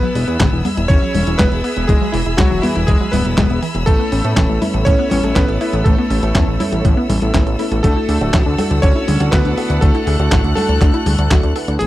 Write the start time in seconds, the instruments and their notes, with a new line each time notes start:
Already playing: electric grand piano B3 B4, string section G#4 E5 B5 E6
0.03 synth arpeggio sound F#3
0.15 analog synth bass E1, synth arpeggio sound G#3, open hi-hat
0.28 analog synth bass E2, synth arpeggio sound E4, closed hi-hat
0.40 analog synth bass D1, synth arpeggio sound G#3, kick, snare, clap, closed hi-hat
0.52 analog synth bass E1, synth arpeggio sound E3
0.65 synth arpeggio sound B3, open hi-hat, high conga
0.77 analog synth bass E1, synth arpeggio sound E4, closed hi-hat
0.88 analog synth bass E1, synth arpeggio sound E3, electric grand piano C#4 C#5, kick, closed hi-hat
1.02 synth arpeggio sound F#3
1.14 analog synth bass E1, synth arpeggio sound G#3, open hi-hat, high conga
1.27 analog synth bass E1, synth arpeggio sound E4, closed hi-hat
1.38 analog synth bass E1, synth arpeggio sound G#3, electric grand piano B3 B4, kick, snare, clap, closed hi-hat
1.52 analog synth bass E1, synth arpeggio sound E3, closed hi-hat
1.64 synth arpeggio sound B3, open hi-hat
1.77 analog synth bass E1, synth arpeggio sound E4, closed hi-hat
1.87 analog synth bass E1, synth arpeggio sound E3, electric grand piano G#3 G#4, kick, closed hi-hat
2.01 synth arpeggio sound F#3
2.12 analog synth bass E1, electric grand piano E3 E4, synth arpeggio sound G#3, open hi-hat
2.26 analog synth bass E1, synth arpeggio sound E4, closed hi-hat
2.37 analog synth bass B1, electric grand piano F#3 F#4, synth arpeggio sound G#3, kick, snare, clap, closed hi-hat
2.51 analog synth bass E1, synth arpeggio sound E3
2.62 electric grand piano E3 E4, synth arpeggio sound B3, open hi-hat, high conga
2.76 analog synth bass E1, synth arpeggio sound E4, closed hi-hat
2.87 analog synth bass E1, synth arpeggio sound E3, electric grand piano G#3 G#4, kick, closed hi-hat
3.01 synth arpeggio sound F#3
3.12 analog synth bass D1, synth arpeggio sound E3, electric grand piano B3 B4, open hi-hat, high conga
3.25 analog synth bass E1, synth arpeggio sound E2, closed hi-hat
3.38 analog synth bass E1, synth arpeggio sound G#3, kick, snare, clap, closed hi-hat
3.50 analog synth bass E1, synth arpeggio sound B3, closed hi-hat
3.62 synth arpeggio sound E3, open hi-hat
3.75 analog synth bass E1, synth arpeggio sound E4, closed hi-hat
3.86 analog synth bass A1, grand piano A3 B3 C#4 E4, synth arpeggio sound A3, electric grand piano A3 A4, string section A4 C#5, kick, closed hi-hat
4.00 synth arpeggio sound B3
4.12 analog synth bass A1, synth arpeggio sound C#4, open hi-hat
4.25 analog synth bass A2, grand piano A3 B3 C#4 E4, synth arpeggio sound A4, closed hi-hat
4.37 analog synth bass E1, synth arpeggio sound C#4, kick, snare, clap, closed hi-hat
4.49 analog synth bass A1, synth arpeggio sound A3
4.62 grand piano A3 B3 C#4 E4, synth arpeggio sound E4, open hi-hat, high conga
4.74 analog synth bass A1, synth arpeggio sound A4, closed hi-hat
4.85 analog synth bass A1, synth arpeggio sound A3, grand piano A3 B3 C#4 E4, electric grand piano C#4 C#5, kick, closed hi-hat
4.99 synth arpeggio sound B3
5.10 analog synth bass A1, synth arpeggio sound C#4, electric grand piano C#4 C#5, open hi-hat, high conga
5.24 analog synth bass A1, grand piano A3 B3 C#4 E4, synth arpeggio sound A4, closed hi-hat
5.35 analog synth bass A1, electric grand piano B3 B4, synth arpeggio sound C#4, kick, snare, clap, closed hi-hat
5.48 analog synth bass A1, synth arpeggio sound A3, closed hi-hat
5.61 grand piano A3 B3 C#4 E4, synth arpeggio sound E4, open hi-hat
5.73 analog synth bass A1, synth arpeggio sound A4, closed hi-hat
5.84 analog synth bass A1, grand piano A3 B3 C#4 E4, synth arpeggio sound A3, electric grand piano A3 A4, kick, closed hi-hat
5.98 synth arpeggio sound B3
6.10 analog synth bass A1, synth arpeggio sound C#4, open hi-hat
6.23 analog synth bass A1, grand piano A3 B3 C#4 E4, synth arpeggio sound A4, closed hi-hat
6.35 analog synth bass E2, synth arpeggio sound C#4, kick, snare, clap, closed hi-hat
6.48 analog synth bass A1, synth arpeggio sound A3
6.60 grand piano A3 B3 C#4 E4, synth arpeggio sound E4, open hi-hat, high conga
6.72 analog synth bass A1, synth arpeggio sound A4, closed hi-hat
6.85 analog synth bass A1, synth arpeggio sound A3, grand piano A3 B3 C#4 E4, kick, closed hi-hat
6.97 synth arpeggio sound B3
7.10 analog synth bass A1, synth arpeggio sound C#4, open hi-hat, high conga
7.22 analog synth bass A1, grand piano A3 B3 C#4 E4, synth arpeggio sound A4, closed hi-hat
7.34 analog synth bass A1, synth arpeggio sound C#4, kick, snare, clap, closed hi-hat
7.47 analog synth bass A1, synth arpeggio sound A3, closed hi-hat
7.59 grand piano A3 B3 C#4 E4, synth arpeggio sound E4, open hi-hat
7.72 analog synth bass A1, synth arpeggio sound A4, closed hi-hat
7.83 analog synth bass D2, grand piano A3 D4 E4 F#4, electric grand piano A3 A4, synth arpeggio sound D4, string section F#5 A5 E6, kick, closed hi-hat
7.96 synth arpeggio sound E4
8.09 analog synth bass D2, synth arpeggio sound G#4, open hi-hat
8.21 analog synth bass D1, grand piano A3 D4 E4 F#4, synth arpeggio sound D5, closed hi-hat
8.34 analog synth bass A1, synth arpeggio sound F#4, kick, snare, clap, closed hi-hat
8.46 analog synth bass D2, synth arpeggio sound D4
8.58 grand piano A3 D4 E4 F#4, synth arpeggio sound A4, open hi-hat, high conga
8.71 analog synth bass D2, synth arpeggio sound D5, closed hi-hat
8.82 analog synth bass D2, grand piano A3 D4 E4 F#4, electric grand piano C#4 C#5, synth arpeggio sound D4, kick, closed hi-hat
8.96 synth arpeggio sound E4
9.08 analog synth bass D2, synth arpeggio sound G#4, open hi-hat, high conga
9.20 analog synth bass D2, grand piano A3 D4 E4 F#4, synth arpeggio sound D5, closed hi-hat
9.31 analog synth bass D2, electric grand piano B3 B4, synth arpeggio sound F#4, kick, snare, clap, closed hi-hat
9.45 analog synth bass D2, synth arpeggio sound D4, closed hi-hat
9.57 grand piano A3 D4 E4 F#4, synth arpeggio sound A4, open hi-hat
9.70 analog synth bass D2, synth arpeggio sound D5, closed hi-hat
9.81 analog synth bass D2, grand piano A3 D4 E4 F#4, electric grand piano A3 A4, synth arpeggio sound D4, string section F#6, kick, closed hi-hat
9.95 synth arpeggio sound E4, closed hi-hat
10.07 analog synth bass D2, synth arpeggio sound G#4, open hi-hat
10.19 analog synth bass D2, grand piano A3 D4 E4 F#4, synth arpeggio sound D5, closed hi-hat
10.32 analog synth bass A1, synth arpeggio sound F#4, kick, snare, clap, closed hi-hat
10.44 analog synth bass D2, synth arpeggio sound D4, closed hi-hat
10.55 grand piano A3 D4 E4 F#4, electric grand piano A3 A4, synth arpeggio sound A4, open hi-hat, high conga
10.69 analog synth bass D2, synth arpeggio sound D5, closed hi-hat
10.81 analog synth bass D2, grand piano A3 D4 E4 F#4, synth arpeggio sound D4, kick, clap, closed hi-hat
10.94 synth arpeggio sound E4, closed hi-hat
11.06 analog synth bass D2, synth arpeggio sound G#4, open hi-hat, high conga
11.19 analog synth bass D2, synth arpeggio sound D5, closed hi-hat
11.31 analog synth bass D2, grand piano A3 D4 E4 F#4, synth arpeggio sound F#4, kick, snare, clap, closed hi-hat
11.43 analog synth bass D2, synth arpeggio sound D4, closed hi-hat
11.56 grand piano A3 D4 E4 B4, synth arpeggio sound A4, open hi-hat
11.68 analog synth bass D2, synth arpeggio sound D5, closed hi-hat
11.79 analog synth bass A1, synth arpeggio sound A3, grand piano B3 C#4 E4 A4, electric grand piano G#4, string section A4 C#5 B5 E6, closed hi-hat